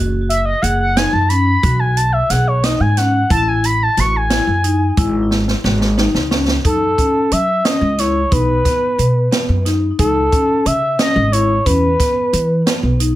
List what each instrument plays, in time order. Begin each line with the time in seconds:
Already playing: upright bass F#1, vibraphone F#4
0.29 analog synth lead E5, closed hi-hat
0.46 analog synth lead D#5
0.62 upright bass F#1, vibraphone G#4, analog synth lead F#5, closed hi-hat
0.80 analog synth lead F#5
0.97 vibraphone D#4, analog synth lead G#5, snare, closed hi-hat
1.13 upright bass F#2, analog synth lead A5
1.29 vibraphone C#4, analog synth lead B5, closed hi-hat
1.63 upright bass B1, vibraphone F#4, kick, closed hi-hat
1.79 analog synth lead G#5
1.96 analog synth lead A5, closed hi-hat
2.12 analog synth lead E5
2.30 upright bass B1, vibraphone G#4, analog synth lead F#5, snare, closed hi-hat
2.47 analog synth lead C#5
2.64 vibraphone D#4, analog synth lead D#5, snare, closed hi-hat
2.80 upright bass G#2, analog synth lead G#5
2.97 vibraphone C#4, analog synth lead F#5, snare, closed hi-hat
3.30 upright bass A1, vibraphone E4, analog synth lead A5, kick, closed hi-hat
3.48 analog synth lead G#5
3.64 analog synth lead B5, closed hi-hat
3.83 analog synth lead A5
3.97 upright bass A1, vibraphone F#4, analog synth lead C#6, snare, closed hi-hat
4.16 analog synth lead G#5
4.30 vibraphone E4, snare, closed hi-hat
4.47 upright bass F#2
4.64 vibraphone D#4, closed hi-hat
4.97 upright bass G#1, vibraphone E4, kick, closed hi-hat
5.31 snare
5.48 snare
5.64 upright bass G#1, vibraphone F#4, snare
5.81 snare
5.98 vibraphone D#4, snare
6.14 upright bass C#2, snare
6.31 vibraphone C#4, snare
6.48 snare
6.65 upright bass F#2, vibraphone D#4, analog synth lead A4, kick, closed hi-hat
6.98 vibraphone C#4, kick, closed hi-hat
7.31 upright bass F#3, analog synth lead E5, closed hi-hat
7.65 vibraphone C#4, analog synth lead D#5, snare, closed hi-hat
7.81 upright bass C#2
7.98 vibraphone E4, analog synth lead C#5, snare, closed hi-hat
8.31 upright bass B1, vibraphone D#4, analog synth lead B4, kick, closed hi-hat
8.65 vibraphone B3, kick, snare, closed hi-hat
8.98 upright bass B2, closed hi-hat
9.31 vibraphone B3, snare, closed hi-hat
9.49 upright bass F#2
9.66 vibraphone D#4, snare, closed hi-hat
9.99 upright bass C#2, vibraphone D#4, analog synth lead A4, kick, closed hi-hat
10.32 vibraphone C#4, kick, closed hi-hat
10.66 upright bass C#3, analog synth lead E5, closed hi-hat
10.99 vibraphone C#4, analog synth lead D#5, snare, closed hi-hat
11.16 upright bass G#1
11.32 vibraphone E4, analog synth lead C#5, closed hi-hat
11.66 upright bass E2, vibraphone C#4, analog synth lead B4, kick, closed hi-hat
11.99 vibraphone B3, kick, snare, closed hi-hat
12.33 upright bass E3, closed hi-hat
12.67 vibraphone B3, snare, closed hi-hat
12.83 upright bass B1
13.00 vibraphone D#4, closed hi-hat